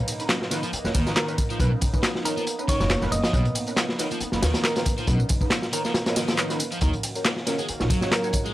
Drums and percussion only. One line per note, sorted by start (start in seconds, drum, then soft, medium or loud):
0.08 closed hi-hat medium
0.08 ride medium
0.08 tambourine medium
0.20 closed hi-hat soft
0.20 tambourine soft
0.29 snare loud
0.29 clap loud
0.29 closed hi-hat loud
0.29 tambourine soft
0.42 snare medium
0.51 snare soft
0.51 closed hi-hat medium
0.51 ride medium
0.51 tambourine medium
0.63 closed hi-hat soft
0.63 tambourine soft
0.73 closed hi-hat medium
0.73 tambourine soft
0.85 snare soft
0.85 tambourine soft
0.95 kick loud
0.95 closed hi-hat medium
0.95 ride medium
0.95 tambourine medium
1.06 snare soft
1.06 tambourine soft
1.16 snare loud
1.16 clap loud
1.16 closed hi-hat medium
1.16 tambourine soft
1.28 closed hi-hat soft
1.28 tambourine soft
1.38 kick loud
1.38 closed hi-hat medium
1.38 ride medium
1.38 tambourine medium
1.50 tambourine soft
1.60 kick loud
1.60 closed hi-hat medium
1.60 tambourine soft
1.81 kick loud
1.81 closed hi-hat medium
1.81 ride medium
1.81 tambourine medium
1.94 kick loud
1.94 tambourine soft
2.03 snare loud
2.03 clap loud
2.03 closed hi-hat loud
2.03 tambourine soft
2.15 snare medium
2.25 closed hi-hat medium
2.25 ride medium
2.25 tambourine medium
2.38 tambourine soft
2.47 closed hi-hat loud
2.47 tambourine soft
2.59 tambourine soft
2.68 kick loud
2.68 closed hi-hat medium
2.68 ride medium
2.68 tambourine medium
2.80 snare medium
2.80 tambourine soft
2.90 snare loud
2.90 clap loud
2.90 closed hi-hat medium
2.90 tambourine soft
3.02 snare medium
3.02 tambourine soft
3.12 closed hi-hat medium
3.12 ride medium
3.12 tambourine medium
3.24 snare loud
3.24 closed hi-hat medium
3.24 tambourine soft
3.33 kick loud
3.33 closed hi-hat medium
3.33 tambourine soft
3.45 closed hi-hat soft
3.55 closed hi-hat medium
3.55 ride medium
3.55 tambourine medium
3.67 closed hi-hat soft
3.67 tambourine soft
3.76 snare loud
3.76 clap loud
3.76 closed hi-hat loud
3.76 tambourine soft
3.89 snare medium
3.99 snare soft
3.99 closed hi-hat medium
3.99 ride medium
3.99 tambourine medium
4.11 closed hi-hat soft
4.11 tambourine soft
4.20 closed hi-hat medium
4.20 tambourine soft
4.32 snare soft
4.32 tambourine soft
4.42 snare loud
4.42 closed hi-hat medium
4.42 ride medium
4.42 tambourine medium
4.54 snare loud
4.54 closed hi-hat medium
4.54 tambourine soft
4.64 snare loud
4.64 clap loud
4.64 closed hi-hat medium
4.64 tambourine soft
4.76 snare loud
4.76 closed hi-hat medium
4.76 tambourine soft
4.85 kick loud
4.85 closed hi-hat medium
4.85 ride medium
4.85 tambourine medium
4.98 closed hi-hat soft
4.98 tambourine soft
5.07 kick loud
5.07 closed hi-hat loud
5.07 tambourine soft
5.20 tambourine soft
5.29 kick loud
5.29 closed hi-hat medium
5.29 ride medium
5.29 tambourine medium
5.41 kick medium
5.41 tambourine soft
5.50 snare loud
5.50 clap loud
5.50 closed hi-hat medium
5.50 tambourine soft
5.62 snare medium
5.62 tambourine soft
5.73 closed hi-hat medium
5.73 ride medium
5.73 tambourine medium
5.85 snare soft
5.85 tambourine soft
5.94 snare loud
5.94 closed hi-hat medium
5.94 tambourine soft
6.06 snare loud
6.06 closed hi-hat medium
6.06 tambourine soft
6.16 snare loud
6.16 closed hi-hat medium
6.16 ride medium
6.16 tambourine medium
6.28 snare loud
6.28 closed hi-hat medium
6.28 tambourine soft
6.38 snare soft
6.38 clap loud
6.38 tambourine soft
6.50 snare soft
6.50 closed hi-hat medium
6.50 tambourine soft
6.59 closed hi-hat medium
6.59 ride medium
6.59 tambourine medium
6.71 closed hi-hat soft
6.71 tambourine soft
6.81 kick loud
6.81 closed hi-hat medium
6.81 tambourine soft
6.93 closed hi-hat soft
7.03 closed hi-hat medium
7.03 ride medium
7.03 tambourine medium
7.15 closed hi-hat soft
7.15 tambourine soft
7.25 snare loud
7.25 clap loud
7.25 closed hi-hat medium
7.25 tambourine soft
7.37 snare medium
7.46 snare soft
7.46 closed hi-hat medium
7.46 ride medium
7.46 tambourine medium
7.58 closed hi-hat soft
7.58 tambourine soft
7.68 closed hi-hat medium
7.68 tambourine soft
7.80 snare medium
7.80 tambourine soft
7.90 kick loud
7.90 closed hi-hat medium
7.90 ride medium
7.90 tambourine medium
8.01 snare medium
8.01 tambourine soft
8.12 snare loud
8.12 clap loud
8.12 closed hi-hat medium
8.12 tambourine soft
8.23 closed hi-hat soft
8.23 tambourine soft
8.33 kick medium
8.33 closed hi-hat medium
8.33 ride medium
8.33 tambourine medium
8.46 tambourine soft